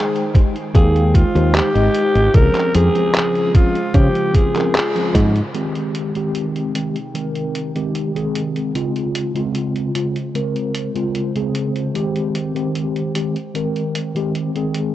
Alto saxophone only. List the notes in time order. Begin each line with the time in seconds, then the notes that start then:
Already playing: G#4
0.75 G#4
1.15 F4
1.56 G4
2.35 A#4
2.76 G#4
3.55 F4
3.95 G4
4.35 G#4
4.74 G#4